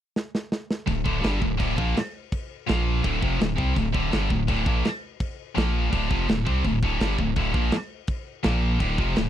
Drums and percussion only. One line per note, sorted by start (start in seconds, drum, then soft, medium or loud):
0.16 snare medium
0.35 snare medium
0.52 snare medium
0.71 snare loud
0.87 kick medium
0.87 crash medium
1.06 kick loud
1.24 snare loud
1.24 crash medium
1.42 kick medium
1.60 kick loud
1.60 crash medium
1.78 kick loud
1.97 snare loud
1.97 crash medium
2.32 kick loud
2.32 crash medium
2.69 snare loud
2.69 crash medium
3.04 kick loud
3.04 crash medium
3.22 kick loud
3.41 snare loud
3.41 crash medium
3.58 kick loud
3.76 kick loud
3.76 crash medium
3.94 kick loud
4.12 snare loud
4.12 crash medium
4.30 kick medium
4.48 kick loud
4.48 crash medium
4.66 kick loud
4.85 snare loud
4.85 crash medium
5.20 kick loud
5.20 crash medium
5.57 snare loud
5.57 crash medium
5.93 kick loud
5.93 crash medium
6.11 kick loud
6.29 snare loud
6.29 crash medium
6.47 kick loud
6.65 kick medium
6.65 crash medium
6.83 kick loud
7.00 snare loud
7.00 crash medium
7.19 kick medium
7.36 kick loud
7.36 crash medium
7.54 kick loud
7.71 snare loud
7.71 crash medium
8.07 kick loud
8.07 crash medium
8.44 snare loud
8.44 crash medium
8.80 kick loud
8.80 crash medium
8.98 kick loud
9.16 snare loud
9.16 crash medium